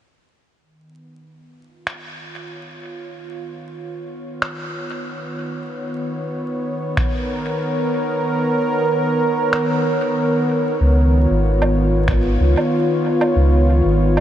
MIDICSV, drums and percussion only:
0, 0, Header, 1, 2, 480
1, 0, Start_track
1, 0, Tempo, 638298
1, 445, Time_signature, 4, 2, 24, 8
1, 10681, End_track
2, 0, Start_track
2, 0, Title_t, "Drums"
2, 1405, Note_on_c, 9, 26, 78
2, 1480, Note_off_c, 9, 26, 0
2, 3324, Note_on_c, 9, 26, 84
2, 3400, Note_off_c, 9, 26, 0
2, 5242, Note_on_c, 9, 36, 97
2, 5244, Note_on_c, 9, 26, 84
2, 5318, Note_off_c, 9, 36, 0
2, 5319, Note_off_c, 9, 26, 0
2, 7165, Note_on_c, 9, 26, 86
2, 7240, Note_off_c, 9, 26, 0
2, 8737, Note_on_c, 9, 77, 76
2, 8812, Note_off_c, 9, 77, 0
2, 9083, Note_on_c, 9, 26, 86
2, 9085, Note_on_c, 9, 36, 97
2, 9158, Note_off_c, 9, 26, 0
2, 9160, Note_off_c, 9, 36, 0
2, 9456, Note_on_c, 9, 77, 58
2, 9531, Note_off_c, 9, 77, 0
2, 9935, Note_on_c, 9, 77, 78
2, 10010, Note_off_c, 9, 77, 0
2, 10657, Note_on_c, 9, 77, 74
2, 10681, Note_off_c, 9, 77, 0
2, 10681, End_track
0, 0, End_of_file